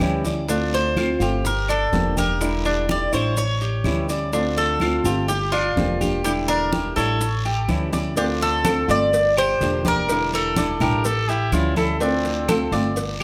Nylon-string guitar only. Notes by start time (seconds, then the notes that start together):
0.00 E3 G3 C#4 E4
0.24 G3 C#4 E4
0.48 D3 A3 C4 F4
0.97 D3 A3 C4 F4
1.20 A3 C4 F4
1.44 muted nylon-string guitar stroke
1.92 D3 F3 A#3 D4 G4
2.16 A#3 D4 G4
2.40 D3 G3 D4 E4
2.89 D3 G3 D4 E4
3.12 G3 D4 E4
3.37 muted nylon-string guitar stroke
3.84 E3 G3 C#4 E4
4.09 G3 C#4 E4
4.33 D3 A3 C4 F4
4.81 D3 A3 C4 F4
5.05 A3 C4 F4
5.29 muted nylon-string guitar stroke
5.77 D3 F3 A#3 D4 G4
6.01 A#3 D4 G4
6.24 D3 G3 D4 E4
6.72 D3 G3 D4 E4
6.96 G3 D4 E4
7.21 muted nylon-string guitar stroke
7.68 E3 G3 C#4 E4
7.92 G3 C#4 E4
8.16 D3 A3 C4 F4
8.64 D3 A3 C4 F4
8.88 A3 C4 F4
9.13 muted nylon-string guitar stroke
9.60 D3 F3 A#3 D4 G4
9.85 A#3 D4 G4
10.09 D3 G3 D4 E4
10.56 D3 G3 D4 E4
10.81 G3 D4 E4
11.04 muted nylon-string guitar stroke
11.53 E3 G3 C#4 E4
11.77 G3 C#4 E4
12.00 D3 A3 C4 F4
12.48 D3 A3 C4 F4
12.73 A3 C4 F4
12.97 muted nylon-string guitar stroke